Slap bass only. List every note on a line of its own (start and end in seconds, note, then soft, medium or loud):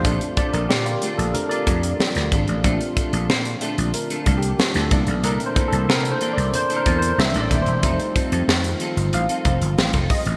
0.05 0.17 A#1 loud
0.54 0.66 A#1 medium
0.70 0.95 A#2 medium
1.18 1.31 A#1 medium
1.67 1.92 F2 loud
2.16 2.28 D2 medium
2.32 2.44 G#1 loud
2.48 2.61 A1 medium
2.64 2.77 A#1 medium
3.13 3.26 A#1 medium
3.29 3.54 A#2 loud
3.78 3.91 A#1 medium
4.26 4.51 C2 medium
4.75 4.88 D2 medium
4.91 5.04 C2 medium
5.07 5.24 B1 medium
5.24 5.36 C2 loud
5.72 5.85 C2 medium
5.88 6.14 C3 loud
6.37 6.50 C2 medium
6.86 7.11 E2 loud
7.18 7.31 C2 loud
7.35 7.47 A1 medium
7.51 7.63 D#1 medium
7.67 7.80 E1 medium
7.83 7.96 F1 medium
8.32 8.45 F2 medium
8.48 8.73 F2 loud
8.97 9.09 G1 medium
9.13 9.26 A1 medium
9.45 9.58 F1 medium
9.62 9.74 G1 medium
9.78 9.90 A1 medium
9.94 10.06 F1 medium
10.26 10.37 A1 medium